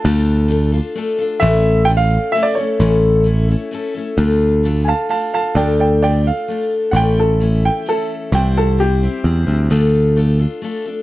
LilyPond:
<<
  \new Staff \with { instrumentName = "Grand piano" } { \time 3/4 \key d \minor \tempo 4 = 130 a''8 r2 r8 | e''4 g''16 f''8. e''16 d''16 cis''8~ | cis''2 r4 | r4. <f'' gis'' a''>8 <f'' a''>8 <f'' a''>8 |
<d'' g''>8 <d'' g''>8 <d'' g''>8 f''4 r8 | <fis'' g''>8 a'8 r8 g''8 a'8 r8 | g''8 a'8 g'2 | r2. | }
  \new Staff \with { instrumentName = "Steel-string acoustic guitar" } { \time 3/4 \key d \minor <d a d' f' a'>4 <a d' f' a'>8 <d' f' a'>8 <a d' f' a'>8 <d' f' a'>8 | <a, e a cis' e' a'>4 <a cis' a'>4 <a cis' e' a'>8 <a cis' e' a'>8 | <a, e a cis' e' a'>4 <a cis' e' a'>8 <a cis' e' a'>8 <a cis' e' a'>8 <a cis' e' a'>8 | <d a d' f' a'>4 <a d' f' a'>4 <a d' f' a'>8 <d' f' a'>8 |
<d a d' f' a'>4 <a d' f' a'>8 <d' f' a'>8 <a d' f' a'>4 | <a, e a cis' e' a'>4 <a cis' e' a'>8 <a cis' e' a'>8 <a cis' e' a'>4 | <c e g c' e' c''>4 <g c' e' c''>8 <g c' e' c''>8 <g c' e' c''>8 <g c' e' c''>8 | <d a d' f' a'>4 <a d' f' a'>8 <d' f' a'>8 <a d' f' a'>8 <d' f' a'>8 | }
  \new Staff \with { instrumentName = "Picked electric bass" } { \clef bass \time 3/4 \key d \minor d,2 r4 | a,,2 r4 | a,,2 r4 | d,2 r4 |
d,2 r4 | a,,2 r4 | c,2 e,8 d,8 | d,2 r4 | }
>>